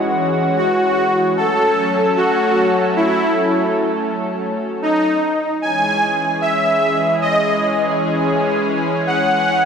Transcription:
0, 0, Header, 1, 3, 480
1, 0, Start_track
1, 0, Key_signature, 4, "minor"
1, 0, Tempo, 530973
1, 1239, Time_signature, 4, 2, 24, 8
1, 8725, End_track
2, 0, Start_track
2, 0, Title_t, "Supersaw synth"
2, 0, Program_c, 0, 81
2, 518, Note_on_c, 0, 66, 99
2, 1143, Note_off_c, 0, 66, 0
2, 1239, Note_on_c, 0, 69, 111
2, 1863, Note_off_c, 0, 69, 0
2, 1959, Note_on_c, 0, 66, 104
2, 2583, Note_off_c, 0, 66, 0
2, 2678, Note_on_c, 0, 64, 102
2, 3303, Note_off_c, 0, 64, 0
2, 4359, Note_on_c, 0, 63, 101
2, 4983, Note_off_c, 0, 63, 0
2, 5079, Note_on_c, 0, 80, 114
2, 5703, Note_off_c, 0, 80, 0
2, 5798, Note_on_c, 0, 76, 100
2, 6423, Note_off_c, 0, 76, 0
2, 6520, Note_on_c, 0, 75, 106
2, 7144, Note_off_c, 0, 75, 0
2, 8199, Note_on_c, 0, 78, 102
2, 8725, Note_off_c, 0, 78, 0
2, 8725, End_track
3, 0, Start_track
3, 0, Title_t, "Analog synth pad"
3, 0, Program_c, 1, 89
3, 0, Note_on_c, 1, 52, 81
3, 0, Note_on_c, 1, 56, 77
3, 0, Note_on_c, 1, 61, 74
3, 0, Note_on_c, 1, 66, 92
3, 1204, Note_off_c, 1, 52, 0
3, 1204, Note_off_c, 1, 56, 0
3, 1204, Note_off_c, 1, 61, 0
3, 1221, Note_off_c, 1, 66, 0
3, 1239, Note_on_c, 1, 54, 81
3, 1239, Note_on_c, 1, 57, 78
3, 1239, Note_on_c, 1, 61, 73
3, 1239, Note_on_c, 1, 69, 91
3, 4566, Note_off_c, 1, 54, 0
3, 4566, Note_off_c, 1, 57, 0
3, 4566, Note_off_c, 1, 61, 0
3, 4566, Note_off_c, 1, 69, 0
3, 5079, Note_on_c, 1, 56, 75
3, 5079, Note_on_c, 1, 61, 78
3, 5080, Note_on_c, 1, 52, 81
3, 5080, Note_on_c, 1, 68, 92
3, 8725, Note_off_c, 1, 52, 0
3, 8725, Note_off_c, 1, 56, 0
3, 8725, Note_off_c, 1, 61, 0
3, 8725, Note_off_c, 1, 68, 0
3, 8725, End_track
0, 0, End_of_file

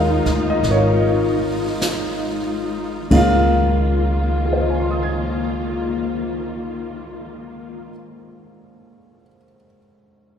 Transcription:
0, 0, Header, 1, 5, 480
1, 0, Start_track
1, 0, Key_signature, -5, "major"
1, 0, Tempo, 1119403
1, 268, Tempo, 1190476
1, 748, Tempo, 1290323
1, 1228, Time_signature, 4, 2, 24, 8
1, 1228, Tempo, 1327434
1, 3861, End_track
2, 0, Start_track
2, 0, Title_t, "Grand piano"
2, 0, Program_c, 0, 0
2, 0, Control_c, 0, 64, 127
2, 0, Note_on_c, 0, 56, 43
2, 0, Note_on_c, 0, 58, 39
2, 0, Note_on_c, 0, 63, 39
2, 0, Note_on_c, 0, 65, 46
2, 0, Note_on_c, 0, 68, 57
2, 0, Note_on_c, 0, 70, 53
2, 0, Note_on_c, 0, 73, 65
2, 0, Note_on_c, 0, 75, 61
2, 0, Note_on_c, 0, 77, 76
2, 209, Note_off_c, 0, 77, 0
2, 214, Note_off_c, 0, 75, 0
2, 214, Note_on_c, 0, 75, 67
2, 277, Note_off_c, 0, 75, 0
2, 291, Note_off_c, 0, 70, 0
2, 297, Note_on_c, 0, 70, 43
2, 298, Note_off_c, 0, 65, 0
2, 303, Note_off_c, 0, 73, 0
2, 303, Note_on_c, 0, 73, 60
2, 304, Note_on_c, 0, 65, 45
2, 741, Note_off_c, 0, 68, 0
2, 1062, Note_off_c, 0, 73, 0
2, 1223, Note_off_c, 0, 56, 0
2, 1225, Note_off_c, 0, 58, 0
2, 1227, Note_off_c, 0, 70, 0
2, 1227, Note_on_c, 0, 49, 57
2, 1228, Note_on_c, 0, 56, 52
2, 1229, Note_off_c, 0, 63, 0
2, 1230, Note_off_c, 0, 65, 0
2, 1231, Note_on_c, 0, 58, 51
2, 1232, Control_c, 0, 64, 0
2, 1234, Note_on_c, 0, 63, 49
2, 1236, Note_on_c, 0, 65, 61
2, 1250, Note_on_c, 0, 77, 70
2, 1300, Control_c, 0, 64, 127
2, 1716, Note_on_c, 0, 68, 37
2, 1742, Note_on_c, 0, 72, 37
2, 1770, Note_on_c, 0, 75, 34
2, 1804, Note_on_c, 0, 80, 33
2, 1840, Note_on_c, 0, 84, 34
2, 1879, Note_on_c, 0, 87, 31
2, 1923, Note_on_c, 0, 92, 29
2, 2956, Note_off_c, 0, 49, 0
2, 2958, Note_off_c, 0, 56, 0
2, 2960, Note_off_c, 0, 58, 0
2, 2964, Note_off_c, 0, 63, 0
2, 2965, Note_off_c, 0, 65, 0
2, 2965, Note_off_c, 0, 77, 0
2, 3431, Note_off_c, 0, 68, 0
2, 3457, Note_off_c, 0, 72, 0
2, 3485, Note_off_c, 0, 75, 0
2, 3519, Note_off_c, 0, 80, 0
2, 3555, Note_off_c, 0, 84, 0
2, 3594, Note_off_c, 0, 87, 0
2, 3638, Note_off_c, 0, 92, 0
2, 3861, End_track
3, 0, Start_track
3, 0, Title_t, "String section"
3, 0, Program_c, 1, 48
3, 0, Note_on_c, 1, 56, 55
3, 0, Note_on_c, 1, 63, 64
3, 0, Note_on_c, 1, 65, 67
3, 1214, Note_off_c, 1, 63, 0
3, 1216, Note_off_c, 1, 65, 0
3, 1218, Note_off_c, 1, 56, 0
3, 1220, Note_on_c, 1, 51, 58
3, 1220, Note_on_c, 1, 58, 56
3, 1227, Note_on_c, 1, 65, 71
3, 2935, Note_off_c, 1, 51, 0
3, 2936, Note_off_c, 1, 58, 0
3, 2942, Note_off_c, 1, 65, 0
3, 3861, End_track
4, 0, Start_track
4, 0, Title_t, "Upright bass"
4, 0, Program_c, 2, 32
4, 0, Note_on_c, 2, 39, 51
4, 95, Note_off_c, 2, 39, 0
4, 110, Note_on_c, 2, 38, 51
4, 258, Note_off_c, 2, 38, 0
4, 270, Note_on_c, 2, 32, 68
4, 1214, Note_off_c, 2, 32, 0
4, 1230, Note_on_c, 2, 37, 73
4, 2945, Note_off_c, 2, 37, 0
4, 3861, End_track
5, 0, Start_track
5, 0, Title_t, "Drums"
5, 111, Note_on_c, 9, 38, 27
5, 154, Note_off_c, 9, 38, 0
5, 272, Note_on_c, 9, 25, 35
5, 272, Note_on_c, 9, 38, 27
5, 312, Note_off_c, 9, 38, 0
5, 748, Note_on_c, 9, 38, 43
5, 748, Note_on_c, 9, 44, 54
5, 785, Note_off_c, 9, 38, 0
5, 785, Note_off_c, 9, 44, 0
5, 1229, Note_on_c, 9, 49, 49
5, 1230, Note_on_c, 9, 36, 41
5, 1265, Note_off_c, 9, 49, 0
5, 1266, Note_off_c, 9, 36, 0
5, 1615, Note_off_c, 9, 25, 0
5, 3861, End_track
0, 0, End_of_file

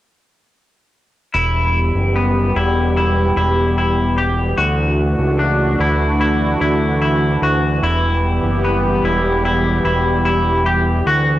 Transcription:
0, 0, Header, 1, 4, 480
1, 0, Start_track
1, 0, Key_signature, 1, "minor"
1, 0, Tempo, 810811
1, 793, Time_signature, 4, 2, 24, 8
1, 6744, End_track
2, 0, Start_track
2, 0, Title_t, "Clean electric guitar"
2, 0, Program_c, 0, 27
2, 792, Note_on_c, 0, 64, 71
2, 1273, Note_off_c, 0, 64, 0
2, 1277, Note_on_c, 0, 59, 68
2, 1515, Note_off_c, 0, 59, 0
2, 1518, Note_on_c, 0, 64, 63
2, 1751, Note_off_c, 0, 64, 0
2, 1758, Note_on_c, 0, 64, 69
2, 1988, Note_off_c, 0, 64, 0
2, 1996, Note_on_c, 0, 64, 66
2, 2230, Note_off_c, 0, 64, 0
2, 2237, Note_on_c, 0, 64, 66
2, 2471, Note_off_c, 0, 64, 0
2, 2473, Note_on_c, 0, 67, 65
2, 2706, Note_off_c, 0, 67, 0
2, 2709, Note_on_c, 0, 66, 83
2, 3191, Note_off_c, 0, 66, 0
2, 3192, Note_on_c, 0, 62, 70
2, 3432, Note_off_c, 0, 62, 0
2, 3436, Note_on_c, 0, 64, 59
2, 3668, Note_off_c, 0, 64, 0
2, 3675, Note_on_c, 0, 64, 71
2, 3908, Note_off_c, 0, 64, 0
2, 3915, Note_on_c, 0, 64, 65
2, 4147, Note_off_c, 0, 64, 0
2, 4154, Note_on_c, 0, 64, 67
2, 4393, Note_off_c, 0, 64, 0
2, 4399, Note_on_c, 0, 66, 70
2, 4635, Note_off_c, 0, 66, 0
2, 4638, Note_on_c, 0, 64, 81
2, 5115, Note_off_c, 0, 64, 0
2, 5118, Note_on_c, 0, 59, 70
2, 5355, Note_off_c, 0, 59, 0
2, 5358, Note_on_c, 0, 64, 64
2, 5590, Note_off_c, 0, 64, 0
2, 5597, Note_on_c, 0, 64, 70
2, 5825, Note_off_c, 0, 64, 0
2, 5832, Note_on_c, 0, 64, 70
2, 6063, Note_off_c, 0, 64, 0
2, 6070, Note_on_c, 0, 64, 69
2, 6309, Note_off_c, 0, 64, 0
2, 6311, Note_on_c, 0, 67, 66
2, 6551, Note_off_c, 0, 67, 0
2, 6553, Note_on_c, 0, 66, 79
2, 6744, Note_off_c, 0, 66, 0
2, 6744, End_track
3, 0, Start_track
3, 0, Title_t, "Analog synth pad"
3, 0, Program_c, 1, 89
3, 789, Note_on_c, 1, 67, 79
3, 792, Note_on_c, 1, 55, 63
3, 794, Note_on_c, 1, 52, 72
3, 795, Note_on_c, 1, 59, 65
3, 2692, Note_off_c, 1, 67, 0
3, 2693, Note_off_c, 1, 55, 0
3, 2695, Note_off_c, 1, 59, 0
3, 2712, Note_on_c, 1, 66, 83
3, 2714, Note_on_c, 1, 57, 74
3, 2716, Note_on_c, 1, 62, 65
3, 4613, Note_off_c, 1, 66, 0
3, 4614, Note_off_c, 1, 57, 0
3, 4615, Note_off_c, 1, 62, 0
3, 4644, Note_on_c, 1, 59, 69
3, 4645, Note_on_c, 1, 55, 66
3, 4645, Note_on_c, 1, 67, 77
3, 6539, Note_off_c, 1, 59, 0
3, 6540, Note_off_c, 1, 55, 0
3, 6540, Note_off_c, 1, 67, 0
3, 6555, Note_on_c, 1, 57, 74
3, 6555, Note_on_c, 1, 62, 70
3, 6556, Note_on_c, 1, 66, 83
3, 6744, Note_off_c, 1, 52, 0
3, 6744, Note_off_c, 1, 57, 0
3, 6744, Note_off_c, 1, 62, 0
3, 6744, Note_off_c, 1, 66, 0
3, 6744, End_track
4, 0, Start_track
4, 0, Title_t, "Analog synth bass"
4, 0, Program_c, 2, 38
4, 797, Note_on_c, 2, 28, 101
4, 1137, Note_off_c, 2, 28, 0
4, 1154, Note_on_c, 2, 30, 79
4, 1495, Note_off_c, 2, 30, 0
4, 1514, Note_on_c, 2, 28, 86
4, 1970, Note_off_c, 2, 28, 0
4, 1994, Note_on_c, 2, 28, 96
4, 2690, Note_off_c, 2, 28, 0
4, 2710, Note_on_c, 2, 38, 99
4, 3054, Note_off_c, 2, 38, 0
4, 3071, Note_on_c, 2, 37, 89
4, 3414, Note_off_c, 2, 37, 0
4, 3430, Note_on_c, 2, 38, 93
4, 3888, Note_off_c, 2, 38, 0
4, 3911, Note_on_c, 2, 38, 88
4, 4368, Note_off_c, 2, 38, 0
4, 4394, Note_on_c, 2, 38, 90
4, 4621, Note_off_c, 2, 38, 0
4, 4633, Note_on_c, 2, 28, 97
4, 4975, Note_off_c, 2, 28, 0
4, 4993, Note_on_c, 2, 30, 75
4, 5335, Note_off_c, 2, 30, 0
4, 5350, Note_on_c, 2, 28, 95
4, 5808, Note_off_c, 2, 28, 0
4, 5831, Note_on_c, 2, 28, 87
4, 6528, Note_off_c, 2, 28, 0
4, 6551, Note_on_c, 2, 38, 94
4, 6744, Note_off_c, 2, 38, 0
4, 6744, End_track
0, 0, End_of_file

